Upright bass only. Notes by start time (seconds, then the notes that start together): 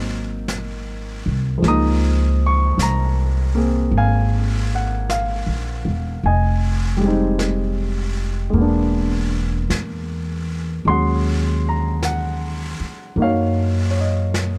Already playing: G#1
1.26 C2
1.62 C#2
2.78 C2
3.91 G#1
5.46 A#1
5.85 E1
6.23 F1
8.53 E1
9.70 E2
10.85 D#2
12.80 muted upright bass stroke
13.16 F#2